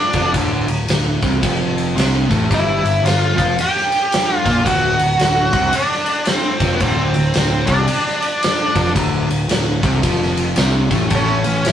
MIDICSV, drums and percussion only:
0, 0, Header, 1, 2, 480
1, 0, Start_track
1, 0, Tempo, 538600
1, 302, Time_signature, 4, 2, 24, 8
1, 10445, End_track
2, 0, Start_track
2, 0, Title_t, "Drums"
2, 118, Note_on_c, 9, 51, 63
2, 123, Note_on_c, 9, 36, 96
2, 207, Note_off_c, 9, 51, 0
2, 213, Note_off_c, 9, 36, 0
2, 304, Note_on_c, 9, 51, 84
2, 305, Note_on_c, 9, 36, 94
2, 393, Note_off_c, 9, 51, 0
2, 394, Note_off_c, 9, 36, 0
2, 607, Note_on_c, 9, 51, 61
2, 697, Note_off_c, 9, 51, 0
2, 788, Note_on_c, 9, 51, 86
2, 804, Note_on_c, 9, 38, 106
2, 877, Note_off_c, 9, 51, 0
2, 893, Note_off_c, 9, 38, 0
2, 1091, Note_on_c, 9, 51, 61
2, 1092, Note_on_c, 9, 36, 98
2, 1180, Note_off_c, 9, 51, 0
2, 1181, Note_off_c, 9, 36, 0
2, 1275, Note_on_c, 9, 36, 109
2, 1275, Note_on_c, 9, 51, 91
2, 1364, Note_off_c, 9, 36, 0
2, 1364, Note_off_c, 9, 51, 0
2, 1586, Note_on_c, 9, 51, 56
2, 1675, Note_off_c, 9, 51, 0
2, 1763, Note_on_c, 9, 51, 85
2, 1779, Note_on_c, 9, 38, 106
2, 1852, Note_off_c, 9, 51, 0
2, 1868, Note_off_c, 9, 38, 0
2, 2056, Note_on_c, 9, 36, 93
2, 2064, Note_on_c, 9, 51, 60
2, 2145, Note_off_c, 9, 36, 0
2, 2153, Note_off_c, 9, 51, 0
2, 2236, Note_on_c, 9, 36, 98
2, 2243, Note_on_c, 9, 51, 77
2, 2325, Note_off_c, 9, 36, 0
2, 2332, Note_off_c, 9, 51, 0
2, 2544, Note_on_c, 9, 51, 56
2, 2633, Note_off_c, 9, 51, 0
2, 2724, Note_on_c, 9, 51, 88
2, 2740, Note_on_c, 9, 38, 102
2, 2813, Note_off_c, 9, 51, 0
2, 2829, Note_off_c, 9, 38, 0
2, 3014, Note_on_c, 9, 36, 107
2, 3023, Note_on_c, 9, 51, 66
2, 3103, Note_off_c, 9, 36, 0
2, 3112, Note_off_c, 9, 51, 0
2, 3195, Note_on_c, 9, 51, 91
2, 3284, Note_off_c, 9, 51, 0
2, 3362, Note_on_c, 9, 38, 31
2, 3451, Note_off_c, 9, 38, 0
2, 3494, Note_on_c, 9, 51, 62
2, 3583, Note_off_c, 9, 51, 0
2, 3674, Note_on_c, 9, 51, 88
2, 3690, Note_on_c, 9, 38, 112
2, 3763, Note_off_c, 9, 51, 0
2, 3779, Note_off_c, 9, 38, 0
2, 3971, Note_on_c, 9, 36, 87
2, 3974, Note_on_c, 9, 51, 63
2, 3991, Note_on_c, 9, 38, 28
2, 4060, Note_off_c, 9, 36, 0
2, 4064, Note_off_c, 9, 51, 0
2, 4080, Note_off_c, 9, 38, 0
2, 4152, Note_on_c, 9, 36, 93
2, 4157, Note_on_c, 9, 51, 89
2, 4241, Note_off_c, 9, 36, 0
2, 4246, Note_off_c, 9, 51, 0
2, 4450, Note_on_c, 9, 51, 62
2, 4539, Note_off_c, 9, 51, 0
2, 4629, Note_on_c, 9, 51, 87
2, 4645, Note_on_c, 9, 38, 98
2, 4718, Note_off_c, 9, 51, 0
2, 4734, Note_off_c, 9, 38, 0
2, 4929, Note_on_c, 9, 36, 108
2, 4930, Note_on_c, 9, 51, 66
2, 5018, Note_off_c, 9, 36, 0
2, 5019, Note_off_c, 9, 51, 0
2, 5104, Note_on_c, 9, 51, 95
2, 5193, Note_off_c, 9, 51, 0
2, 5274, Note_on_c, 9, 38, 32
2, 5363, Note_off_c, 9, 38, 0
2, 5401, Note_on_c, 9, 51, 59
2, 5490, Note_off_c, 9, 51, 0
2, 5574, Note_on_c, 9, 51, 85
2, 5590, Note_on_c, 9, 38, 103
2, 5663, Note_off_c, 9, 51, 0
2, 5679, Note_off_c, 9, 38, 0
2, 5883, Note_on_c, 9, 51, 57
2, 5885, Note_on_c, 9, 36, 94
2, 5899, Note_on_c, 9, 38, 29
2, 5972, Note_off_c, 9, 51, 0
2, 5974, Note_off_c, 9, 36, 0
2, 5988, Note_off_c, 9, 38, 0
2, 6063, Note_on_c, 9, 51, 77
2, 6066, Note_on_c, 9, 36, 99
2, 6152, Note_off_c, 9, 51, 0
2, 6155, Note_off_c, 9, 36, 0
2, 6363, Note_on_c, 9, 51, 57
2, 6452, Note_off_c, 9, 51, 0
2, 6540, Note_on_c, 9, 51, 78
2, 6556, Note_on_c, 9, 38, 101
2, 6629, Note_off_c, 9, 51, 0
2, 6645, Note_off_c, 9, 38, 0
2, 6836, Note_on_c, 9, 51, 62
2, 6843, Note_on_c, 9, 36, 98
2, 6926, Note_off_c, 9, 51, 0
2, 6932, Note_off_c, 9, 36, 0
2, 7019, Note_on_c, 9, 51, 85
2, 7108, Note_off_c, 9, 51, 0
2, 7194, Note_on_c, 9, 38, 30
2, 7283, Note_off_c, 9, 38, 0
2, 7329, Note_on_c, 9, 51, 62
2, 7418, Note_off_c, 9, 51, 0
2, 7509, Note_on_c, 9, 51, 88
2, 7525, Note_on_c, 9, 38, 113
2, 7598, Note_off_c, 9, 51, 0
2, 7614, Note_off_c, 9, 38, 0
2, 7803, Note_on_c, 9, 36, 93
2, 7805, Note_on_c, 9, 51, 60
2, 7893, Note_off_c, 9, 36, 0
2, 7894, Note_off_c, 9, 51, 0
2, 7983, Note_on_c, 9, 36, 99
2, 7984, Note_on_c, 9, 51, 88
2, 8072, Note_off_c, 9, 36, 0
2, 8073, Note_off_c, 9, 51, 0
2, 8293, Note_on_c, 9, 51, 65
2, 8382, Note_off_c, 9, 51, 0
2, 8460, Note_on_c, 9, 51, 92
2, 8476, Note_on_c, 9, 38, 105
2, 8549, Note_off_c, 9, 51, 0
2, 8565, Note_off_c, 9, 38, 0
2, 8763, Note_on_c, 9, 36, 104
2, 8767, Note_on_c, 9, 51, 68
2, 8852, Note_off_c, 9, 36, 0
2, 8856, Note_off_c, 9, 51, 0
2, 8941, Note_on_c, 9, 51, 91
2, 8942, Note_on_c, 9, 36, 100
2, 9031, Note_off_c, 9, 36, 0
2, 9031, Note_off_c, 9, 51, 0
2, 9110, Note_on_c, 9, 38, 34
2, 9199, Note_off_c, 9, 38, 0
2, 9245, Note_on_c, 9, 51, 65
2, 9334, Note_off_c, 9, 51, 0
2, 9410, Note_on_c, 9, 51, 84
2, 9426, Note_on_c, 9, 38, 106
2, 9499, Note_off_c, 9, 51, 0
2, 9515, Note_off_c, 9, 38, 0
2, 9721, Note_on_c, 9, 36, 97
2, 9722, Note_on_c, 9, 51, 60
2, 9738, Note_on_c, 9, 38, 30
2, 9811, Note_off_c, 9, 36, 0
2, 9811, Note_off_c, 9, 51, 0
2, 9827, Note_off_c, 9, 38, 0
2, 9895, Note_on_c, 9, 51, 83
2, 9901, Note_on_c, 9, 36, 93
2, 9984, Note_off_c, 9, 51, 0
2, 9990, Note_off_c, 9, 36, 0
2, 10197, Note_on_c, 9, 51, 62
2, 10286, Note_off_c, 9, 51, 0
2, 10380, Note_on_c, 9, 51, 85
2, 10396, Note_on_c, 9, 38, 101
2, 10445, Note_off_c, 9, 38, 0
2, 10445, Note_off_c, 9, 51, 0
2, 10445, End_track
0, 0, End_of_file